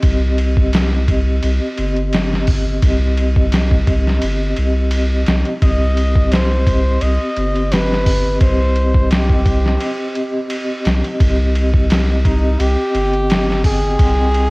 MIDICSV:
0, 0, Header, 1, 5, 480
1, 0, Start_track
1, 0, Key_signature, -3, "minor"
1, 0, Tempo, 697674
1, 25, Time_signature, 4, 2, 24, 8
1, 9976, End_track
2, 0, Start_track
2, 0, Title_t, "Muted trumpet"
2, 0, Program_c, 0, 59
2, 3872, Note_on_c, 0, 75, 105
2, 4350, Note_on_c, 0, 72, 96
2, 4360, Note_off_c, 0, 75, 0
2, 4833, Note_on_c, 0, 75, 107
2, 4843, Note_off_c, 0, 72, 0
2, 5314, Note_on_c, 0, 71, 106
2, 5325, Note_off_c, 0, 75, 0
2, 5786, Note_off_c, 0, 71, 0
2, 5790, Note_on_c, 0, 72, 98
2, 6240, Note_off_c, 0, 72, 0
2, 6269, Note_on_c, 0, 67, 78
2, 7199, Note_off_c, 0, 67, 0
2, 8428, Note_on_c, 0, 63, 87
2, 8669, Note_on_c, 0, 67, 112
2, 8679, Note_off_c, 0, 63, 0
2, 9387, Note_off_c, 0, 67, 0
2, 9393, Note_on_c, 0, 68, 127
2, 9976, Note_off_c, 0, 68, 0
2, 9976, End_track
3, 0, Start_track
3, 0, Title_t, "Vibraphone"
3, 0, Program_c, 1, 11
3, 0, Control_c, 1, 64, 127
3, 12, Note_on_c, 1, 60, 85
3, 27, Note_on_c, 1, 67, 77
3, 33, Control_c, 1, 64, 0
3, 44, Note_on_c, 1, 75, 87
3, 162, Control_c, 1, 64, 127
3, 712, Note_off_c, 1, 60, 0
3, 719, Note_off_c, 1, 67, 0
3, 727, Note_off_c, 1, 75, 0
3, 743, Note_on_c, 1, 60, 68
3, 751, Note_on_c, 1, 67, 62
3, 758, Note_on_c, 1, 75, 70
3, 1197, Note_off_c, 1, 60, 0
3, 1201, Note_off_c, 1, 67, 0
3, 1204, Note_off_c, 1, 75, 0
3, 1221, Note_on_c, 1, 60, 76
3, 1237, Note_on_c, 1, 67, 66
3, 1251, Note_on_c, 1, 75, 82
3, 1916, Note_off_c, 1, 60, 0
3, 1924, Note_off_c, 1, 67, 0
3, 1931, Note_off_c, 1, 75, 0
3, 1937, Note_on_c, 1, 60, 83
3, 1952, Note_on_c, 1, 67, 81
3, 1966, Note_on_c, 1, 75, 93
3, 2634, Note_off_c, 1, 60, 0
3, 2642, Note_off_c, 1, 67, 0
3, 2649, Note_off_c, 1, 75, 0
3, 2667, Note_on_c, 1, 60, 67
3, 2674, Note_on_c, 1, 67, 61
3, 2682, Note_on_c, 1, 75, 76
3, 3119, Note_off_c, 1, 60, 0
3, 3123, Note_off_c, 1, 67, 0
3, 3127, Note_off_c, 1, 75, 0
3, 3138, Note_on_c, 1, 60, 72
3, 3155, Note_on_c, 1, 67, 66
3, 3169, Note_on_c, 1, 75, 79
3, 3834, Note_off_c, 1, 60, 0
3, 3843, Note_off_c, 1, 67, 0
3, 3850, Note_off_c, 1, 75, 0
3, 3855, Note_on_c, 1, 60, 83
3, 3870, Note_on_c, 1, 67, 75
3, 3873, Control_c, 1, 64, 0
3, 3885, Note_on_c, 1, 75, 94
3, 3980, Control_c, 1, 64, 127
3, 4553, Note_off_c, 1, 60, 0
3, 4561, Note_off_c, 1, 67, 0
3, 4568, Note_off_c, 1, 75, 0
3, 4583, Note_on_c, 1, 60, 66
3, 4589, Note_on_c, 1, 67, 61
3, 4600, Note_on_c, 1, 75, 74
3, 5037, Note_off_c, 1, 60, 0
3, 5040, Note_off_c, 1, 67, 0
3, 5046, Note_off_c, 1, 75, 0
3, 5062, Note_on_c, 1, 60, 73
3, 5077, Note_on_c, 1, 67, 69
3, 5091, Note_on_c, 1, 75, 83
3, 5756, Note_off_c, 1, 60, 0
3, 5764, Note_off_c, 1, 67, 0
3, 5771, Note_off_c, 1, 75, 0
3, 5773, Note_on_c, 1, 60, 85
3, 5791, Note_on_c, 1, 67, 78
3, 5803, Note_on_c, 1, 75, 94
3, 6472, Note_off_c, 1, 60, 0
3, 6481, Note_off_c, 1, 67, 0
3, 6487, Note_off_c, 1, 75, 0
3, 6507, Note_on_c, 1, 60, 66
3, 6513, Note_on_c, 1, 67, 63
3, 6522, Note_on_c, 1, 75, 81
3, 6959, Note_off_c, 1, 60, 0
3, 6962, Note_off_c, 1, 67, 0
3, 6966, Note_off_c, 1, 75, 0
3, 6979, Note_on_c, 1, 60, 72
3, 6993, Note_on_c, 1, 67, 71
3, 7007, Note_on_c, 1, 75, 84
3, 7675, Note_off_c, 1, 60, 0
3, 7682, Note_off_c, 1, 67, 0
3, 7689, Note_off_c, 1, 75, 0
3, 7693, Note_on_c, 1, 60, 81
3, 7711, Note_on_c, 1, 67, 80
3, 7713, Control_c, 1, 64, 0
3, 7724, Note_on_c, 1, 75, 95
3, 7830, Control_c, 1, 64, 127
3, 8392, Note_off_c, 1, 60, 0
3, 8401, Note_off_c, 1, 67, 0
3, 8408, Note_off_c, 1, 75, 0
3, 8425, Note_on_c, 1, 60, 68
3, 8432, Note_on_c, 1, 67, 67
3, 8442, Note_on_c, 1, 75, 75
3, 8878, Note_off_c, 1, 60, 0
3, 8882, Note_off_c, 1, 67, 0
3, 8886, Note_off_c, 1, 75, 0
3, 8898, Note_on_c, 1, 60, 73
3, 8913, Note_on_c, 1, 79, 73
3, 8929, Note_on_c, 1, 75, 86
3, 9594, Note_off_c, 1, 60, 0
3, 9602, Note_off_c, 1, 79, 0
3, 9610, Note_off_c, 1, 75, 0
3, 9613, Note_on_c, 1, 60, 90
3, 9628, Note_on_c, 1, 79, 75
3, 9645, Note_on_c, 1, 75, 90
3, 9976, Note_off_c, 1, 60, 0
3, 9976, Note_off_c, 1, 75, 0
3, 9976, Note_off_c, 1, 79, 0
3, 9976, End_track
4, 0, Start_track
4, 0, Title_t, "Analog synth bass"
4, 0, Program_c, 2, 38
4, 25, Note_on_c, 2, 36, 94
4, 963, Note_off_c, 2, 36, 0
4, 988, Note_on_c, 2, 36, 90
4, 1099, Note_off_c, 2, 36, 0
4, 1228, Note_on_c, 2, 31, 86
4, 1925, Note_off_c, 2, 31, 0
4, 1945, Note_on_c, 2, 36, 94
4, 2884, Note_off_c, 2, 36, 0
4, 2911, Note_on_c, 2, 31, 88
4, 3121, Note_off_c, 2, 31, 0
4, 3153, Note_on_c, 2, 36, 77
4, 3607, Note_off_c, 2, 36, 0
4, 3630, Note_on_c, 2, 36, 92
4, 3741, Note_off_c, 2, 36, 0
4, 3868, Note_on_c, 2, 36, 94
4, 4805, Note_off_c, 2, 36, 0
4, 4832, Note_on_c, 2, 36, 94
4, 4941, Note_off_c, 2, 36, 0
4, 5072, Note_on_c, 2, 31, 86
4, 5767, Note_off_c, 2, 31, 0
4, 5788, Note_on_c, 2, 36, 93
4, 6725, Note_off_c, 2, 36, 0
4, 7474, Note_on_c, 2, 36, 89
4, 7582, Note_off_c, 2, 36, 0
4, 7711, Note_on_c, 2, 36, 94
4, 8646, Note_off_c, 2, 36, 0
4, 8670, Note_on_c, 2, 36, 92
4, 8780, Note_off_c, 2, 36, 0
4, 8909, Note_on_c, 2, 31, 89
4, 9606, Note_off_c, 2, 31, 0
4, 9630, Note_on_c, 2, 36, 93
4, 9976, Note_off_c, 2, 36, 0
4, 9976, End_track
5, 0, Start_track
5, 0, Title_t, "Drums"
5, 19, Note_on_c, 9, 51, 78
5, 22, Note_on_c, 9, 36, 103
5, 88, Note_off_c, 9, 51, 0
5, 91, Note_off_c, 9, 36, 0
5, 262, Note_on_c, 9, 51, 68
5, 331, Note_off_c, 9, 51, 0
5, 392, Note_on_c, 9, 36, 87
5, 461, Note_off_c, 9, 36, 0
5, 502, Note_on_c, 9, 51, 85
5, 515, Note_on_c, 9, 38, 118
5, 571, Note_off_c, 9, 51, 0
5, 583, Note_off_c, 9, 38, 0
5, 743, Note_on_c, 9, 36, 92
5, 744, Note_on_c, 9, 51, 69
5, 812, Note_off_c, 9, 36, 0
5, 813, Note_off_c, 9, 51, 0
5, 981, Note_on_c, 9, 51, 78
5, 1050, Note_off_c, 9, 51, 0
5, 1221, Note_on_c, 9, 51, 66
5, 1290, Note_off_c, 9, 51, 0
5, 1350, Note_on_c, 9, 51, 37
5, 1419, Note_off_c, 9, 51, 0
5, 1461, Note_on_c, 9, 51, 82
5, 1474, Note_on_c, 9, 38, 105
5, 1530, Note_off_c, 9, 51, 0
5, 1542, Note_off_c, 9, 38, 0
5, 1603, Note_on_c, 9, 38, 40
5, 1671, Note_off_c, 9, 38, 0
5, 1698, Note_on_c, 9, 46, 71
5, 1702, Note_on_c, 9, 36, 84
5, 1767, Note_off_c, 9, 46, 0
5, 1771, Note_off_c, 9, 36, 0
5, 1942, Note_on_c, 9, 51, 86
5, 1943, Note_on_c, 9, 36, 107
5, 2011, Note_off_c, 9, 51, 0
5, 2012, Note_off_c, 9, 36, 0
5, 2183, Note_on_c, 9, 51, 65
5, 2252, Note_off_c, 9, 51, 0
5, 2312, Note_on_c, 9, 36, 86
5, 2381, Note_off_c, 9, 36, 0
5, 2421, Note_on_c, 9, 51, 86
5, 2433, Note_on_c, 9, 38, 107
5, 2490, Note_off_c, 9, 51, 0
5, 2502, Note_off_c, 9, 38, 0
5, 2552, Note_on_c, 9, 36, 79
5, 2621, Note_off_c, 9, 36, 0
5, 2663, Note_on_c, 9, 51, 68
5, 2664, Note_on_c, 9, 36, 93
5, 2731, Note_off_c, 9, 51, 0
5, 2732, Note_off_c, 9, 36, 0
5, 2802, Note_on_c, 9, 38, 42
5, 2871, Note_off_c, 9, 38, 0
5, 2901, Note_on_c, 9, 51, 84
5, 2970, Note_off_c, 9, 51, 0
5, 3142, Note_on_c, 9, 51, 64
5, 3210, Note_off_c, 9, 51, 0
5, 3378, Note_on_c, 9, 51, 87
5, 3447, Note_off_c, 9, 51, 0
5, 3622, Note_on_c, 9, 51, 64
5, 3634, Note_on_c, 9, 38, 115
5, 3691, Note_off_c, 9, 51, 0
5, 3703, Note_off_c, 9, 38, 0
5, 3751, Note_on_c, 9, 51, 43
5, 3820, Note_off_c, 9, 51, 0
5, 3865, Note_on_c, 9, 36, 107
5, 3865, Note_on_c, 9, 51, 83
5, 3934, Note_off_c, 9, 36, 0
5, 3934, Note_off_c, 9, 51, 0
5, 4107, Note_on_c, 9, 51, 68
5, 4175, Note_off_c, 9, 51, 0
5, 4234, Note_on_c, 9, 36, 89
5, 4303, Note_off_c, 9, 36, 0
5, 4346, Note_on_c, 9, 51, 86
5, 4358, Note_on_c, 9, 38, 108
5, 4414, Note_off_c, 9, 51, 0
5, 4427, Note_off_c, 9, 38, 0
5, 4586, Note_on_c, 9, 36, 99
5, 4588, Note_on_c, 9, 51, 69
5, 4655, Note_off_c, 9, 36, 0
5, 4657, Note_off_c, 9, 51, 0
5, 4825, Note_on_c, 9, 51, 76
5, 4894, Note_off_c, 9, 51, 0
5, 5067, Note_on_c, 9, 51, 63
5, 5136, Note_off_c, 9, 51, 0
5, 5197, Note_on_c, 9, 51, 36
5, 5266, Note_off_c, 9, 51, 0
5, 5307, Note_on_c, 9, 51, 88
5, 5320, Note_on_c, 9, 38, 105
5, 5376, Note_off_c, 9, 51, 0
5, 5388, Note_off_c, 9, 38, 0
5, 5448, Note_on_c, 9, 38, 41
5, 5517, Note_off_c, 9, 38, 0
5, 5545, Note_on_c, 9, 36, 87
5, 5546, Note_on_c, 9, 46, 77
5, 5614, Note_off_c, 9, 36, 0
5, 5615, Note_off_c, 9, 46, 0
5, 5784, Note_on_c, 9, 51, 80
5, 5785, Note_on_c, 9, 36, 107
5, 5853, Note_off_c, 9, 51, 0
5, 5854, Note_off_c, 9, 36, 0
5, 6025, Note_on_c, 9, 51, 62
5, 6094, Note_off_c, 9, 51, 0
5, 6154, Note_on_c, 9, 36, 85
5, 6223, Note_off_c, 9, 36, 0
5, 6266, Note_on_c, 9, 51, 84
5, 6278, Note_on_c, 9, 38, 121
5, 6335, Note_off_c, 9, 51, 0
5, 6347, Note_off_c, 9, 38, 0
5, 6394, Note_on_c, 9, 36, 85
5, 6463, Note_off_c, 9, 36, 0
5, 6506, Note_on_c, 9, 36, 96
5, 6506, Note_on_c, 9, 51, 67
5, 6574, Note_off_c, 9, 51, 0
5, 6575, Note_off_c, 9, 36, 0
5, 6644, Note_on_c, 9, 38, 42
5, 6713, Note_off_c, 9, 38, 0
5, 6745, Note_on_c, 9, 51, 85
5, 6814, Note_off_c, 9, 51, 0
5, 6987, Note_on_c, 9, 51, 61
5, 7055, Note_off_c, 9, 51, 0
5, 7226, Note_on_c, 9, 51, 88
5, 7294, Note_off_c, 9, 51, 0
5, 7467, Note_on_c, 9, 51, 66
5, 7479, Note_on_c, 9, 38, 101
5, 7536, Note_off_c, 9, 51, 0
5, 7548, Note_off_c, 9, 38, 0
5, 7598, Note_on_c, 9, 51, 44
5, 7666, Note_off_c, 9, 51, 0
5, 7707, Note_on_c, 9, 36, 109
5, 7709, Note_on_c, 9, 51, 86
5, 7776, Note_off_c, 9, 36, 0
5, 7777, Note_off_c, 9, 51, 0
5, 7949, Note_on_c, 9, 51, 70
5, 8017, Note_off_c, 9, 51, 0
5, 8075, Note_on_c, 9, 36, 87
5, 8143, Note_off_c, 9, 36, 0
5, 8187, Note_on_c, 9, 51, 90
5, 8200, Note_on_c, 9, 38, 106
5, 8256, Note_off_c, 9, 51, 0
5, 8269, Note_off_c, 9, 38, 0
5, 8427, Note_on_c, 9, 36, 95
5, 8429, Note_on_c, 9, 51, 66
5, 8496, Note_off_c, 9, 36, 0
5, 8498, Note_off_c, 9, 51, 0
5, 8668, Note_on_c, 9, 51, 81
5, 8737, Note_off_c, 9, 51, 0
5, 8909, Note_on_c, 9, 51, 67
5, 8977, Note_off_c, 9, 51, 0
5, 9037, Note_on_c, 9, 51, 38
5, 9106, Note_off_c, 9, 51, 0
5, 9150, Note_on_c, 9, 51, 89
5, 9163, Note_on_c, 9, 38, 120
5, 9219, Note_off_c, 9, 51, 0
5, 9231, Note_off_c, 9, 38, 0
5, 9290, Note_on_c, 9, 38, 40
5, 9358, Note_off_c, 9, 38, 0
5, 9386, Note_on_c, 9, 36, 87
5, 9386, Note_on_c, 9, 46, 77
5, 9455, Note_off_c, 9, 36, 0
5, 9455, Note_off_c, 9, 46, 0
5, 9626, Note_on_c, 9, 36, 108
5, 9627, Note_on_c, 9, 51, 86
5, 9695, Note_off_c, 9, 36, 0
5, 9695, Note_off_c, 9, 51, 0
5, 9867, Note_on_c, 9, 51, 67
5, 9936, Note_off_c, 9, 51, 0
5, 9976, End_track
0, 0, End_of_file